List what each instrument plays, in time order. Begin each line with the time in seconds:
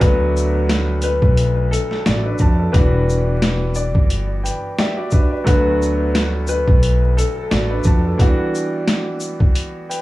Already playing: grand piano B4
0.00 grand piano D2 F#3 A3 B3 D4 F#4, upright bass D2, upright piano B4, kick, closed hi-hat
0.37 shaker
0.69 snare, closed hi-hat
1.02 upright piano B4, closed hi-hat, shaker
1.22 upright bass B1, kick
1.37 closed hi-hat
1.71 upright piano A4, closed hi-hat, shaker
1.91 grand piano A4, snare
2.06 upright bass A1, grand piano F#4 D5, snare, closed hi-hat
2.25 grand piano D4 B4
2.38 upright bass F2, grand piano A5, kick, shaker
2.59 grand piano A4
2.72 upright bass E1, grand piano E3 G3 B3 D4 F#4, upright piano B4, kick, closed hi-hat
3.09 shaker
3.42 snare, closed hi-hat
3.74 upright piano D5, shaker
3.95 upright bass G1, kick
4.10 closed hi-hat
4.44 grand piano B4 G5, closed hi-hat, shaker
4.79 grand piano G4 E5, upright piano D5, snare, closed hi-hat
4.97 grand piano F#4 D5
5.11 grand piano D4 B4, kick, shaker
5.32 grand piano D4 B4
5.44 grand piano D2 F#3 A3 B3 D4 F#4, upright bass D2, upright piano B4, kick, closed hi-hat
5.82 shaker
6.15 snare, closed hi-hat
6.47 upright piano B4, shaker
6.68 upright bass B1, kick
6.83 closed hi-hat
7.17 upright piano A4, closed hi-hat, shaker
7.36 grand piano A4
7.51 upright bass A1, grand piano F#4 D5, snare, closed hi-hat
7.70 grand piano D4 B4
7.84 upright bass F2, grand piano A5, kick, shaker
8.05 grand piano A4
8.17 grand piano E3 G3 B3 D4 F#4, kick, closed hi-hat
8.55 shaker
8.88 snare, closed hi-hat
9.20 shaker
9.40 kick
9.55 closed hi-hat
9.89 grand piano B4 G5, closed hi-hat, shaker